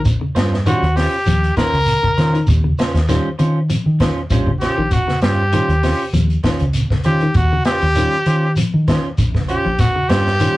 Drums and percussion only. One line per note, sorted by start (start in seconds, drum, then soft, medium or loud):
0.05 kick medium
0.05 closed hi-hat medium
0.05 shekere medium
0.36 snare medium
0.36 closed hi-hat medium
0.36 shekere soft
0.53 snare soft
0.66 closed hi-hat medium
0.66 shekere medium
0.83 closed hi-hat soft
0.96 snare soft
0.96 open hi-hat medium
0.96 shekere soft
1.26 closed hi-hat medium
1.26 shekere medium
1.43 closed hi-hat soft
1.56 kick medium
1.56 snare medium
1.56 closed hi-hat soft
1.56 shekere soft
1.74 closed hi-hat soft
1.86 closed hi-hat medium
1.86 shekere medium
2.04 kick medium
2.17 snare soft
2.17 closed hi-hat soft
2.17 shekere soft
2.35 closed hi-hat soft
2.47 kick medium
2.47 closed hi-hat medium
2.47 shekere medium
2.78 snare medium
2.78 closed hi-hat medium
2.78 shekere soft
2.95 snare soft
2.95 closed hi-hat soft
3.08 snare soft
3.08 closed hi-hat medium
3.08 shekere medium
3.39 closed hi-hat medium
3.39 shekere soft
3.70 closed hi-hat medium
3.70 shekere medium
4.00 kick medium
4.00 snare medium
4.00 closed hi-hat soft
4.00 shekere soft
4.30 kick medium
4.30 closed hi-hat medium
4.30 shekere medium
4.47 kick medium
4.61 snare soft
4.61 closed hi-hat soft
4.61 shekere soft
4.91 kick medium
4.91 closed hi-hat medium
4.91 shekere medium
5.09 snare soft
5.22 snare medium
5.22 closed hi-hat medium
5.22 shekere soft
5.52 closed hi-hat medium
5.52 shekere medium
5.69 closed hi-hat soft
5.83 snare soft
5.83 open hi-hat medium
5.83 shekere soft
6.13 closed hi-hat medium
6.13 shekere medium
6.30 closed hi-hat soft
6.43 kick medium
6.43 snare medium
6.43 closed hi-hat soft
6.43 shekere soft
6.59 closed hi-hat soft
6.73 closed hi-hat medium
6.73 shekere medium
6.90 kick medium
6.90 snare soft
7.04 closed hi-hat soft
7.04 shekere soft
7.20 closed hi-hat soft
7.34 kick medium
7.34 closed hi-hat medium
7.34 shekere medium
7.65 snare medium
7.65 closed hi-hat medium
7.65 shekere soft
7.81 closed hi-hat soft
7.95 closed hi-hat medium
7.95 shekere medium
8.26 closed hi-hat medium
8.26 shekere soft
8.56 closed hi-hat medium
8.56 shekere medium
8.88 kick medium
8.88 snare medium
8.88 closed hi-hat medium
8.88 shekere soft
9.18 kick medium
9.18 closed hi-hat medium
9.18 shekere medium
9.35 kick medium
9.35 snare soft
9.49 closed hi-hat soft
9.49 shekere soft
9.79 kick medium
9.79 snare soft
9.79 closed hi-hat medium
9.79 shekere medium
10.09 snare medium
10.09 closed hi-hat medium
10.09 shekere soft
10.27 snare soft
10.40 closed hi-hat medium
10.40 shekere medium